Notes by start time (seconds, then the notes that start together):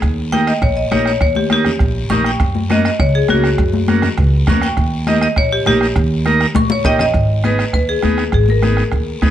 0.02 D#2, bombo low, bombo rim, long guiro
0.32 A#3 D#4 G4 G5, bombo rim, high conga, short guiro
0.47 D#5, bombo rim, short guiro
0.62 A#1 C#5, bombo low, bombo rim
0.77 D#5
0.91 A#1 A#3 D#4 G4 C#5, bombo rim, high conga, short guiro
1.06 C#5, bombo rim, short guiro
1.21 D#2 C#5, bombo low, bombo rim, long guiro
1.35 G4, high conga
1.50 A#3 D#4 G4, bombo rim, high conga, short guiro
1.65 bombo rim, low conga, short guiro
1.79 A#1, bombo low, bombo rim, long guiro
2.10 A#1 A#3 D#4 G4 C#6, bombo rim, high conga, low conga, short guiro
2.24 G5, bombo rim, short guiro
2.40 F#2, bombo low, bombo rim, long guiro
2.55 high conga
2.70 A#3 C#4 F#4 D#5, bombo rim, high conga, short guiro
2.85 D#5, bombo rim, short guiro
2.99 C#2 C#5, bombo low, bombo rim, long guiro
3.15 G#4
3.28 C#2 A#3 C#4 F#4, bombo rim, high conga, short guiro
3.44 bombo rim, short guiro
3.58 F#2, bombo low, bombo rim
3.73 high conga
3.88 A#3 C#4 F#4, bombo rim, high conga, short guiro
4.02 bombo rim, low conga, short guiro
4.18 C#2, bombo low, bombo rim
4.47 E2 A#3 C#4 F#4 C#6, bombo low, bombo rim, high conga, low conga, short guiro
4.62 G5, bombo rim, short guiro
4.77 D#2, bombo low, bombo rim, long guiro
5.07 A#3 D#4 G4 D#5, bombo rim, high conga, short guiro
5.21 D#5, bombo rim, short guiro
5.36 A#1 C#5, bombo low, bombo rim, long guiro
5.53 G4
5.66 A#1 A#3 D#4 G4, bombo rim, high conga, short guiro
5.81 bombo rim, short guiro
5.96 D#2, bombo low, bombo rim, long guiro
6.25 A#3 D#4 A#4, bombo rim, high conga, short guiro
6.40 bombo rim, short guiro
6.55 A#1 C#6, bombo low, bombo rim, high conga
6.70 C#5, high conga
6.84 A#1 A#3 D#4 G4 D#5 G5, bombo low, bombo rim, low conga, short guiro
6.99 D#5, bombo rim, low conga, short guiro
7.14 G#1, bombo low, bombo rim
7.44 B3 D#4 G#4 B4, bombo rim, high conga, short guiro
7.59 bombo rim, short guiro
7.73 D#2 B4, bombo low, bombo rim, long guiro
7.89 G#4
8.03 D#2 B3 D#4 G#4, bombo rim, high conga, short guiro
8.18 bombo rim, short guiro
8.32 G#1 G#4, bombo low, bombo rim, long guiro
8.48 A#4, high conga
8.62 B3 D#4 G#4, bombo rim, high conga, short guiro
8.77 bombo rim, short guiro
8.92 D#2, bombo low, bombo rim, long guiro
9.22 D#2 B3 D#4 G#4, bombo low, bombo rim, high conga, short guiro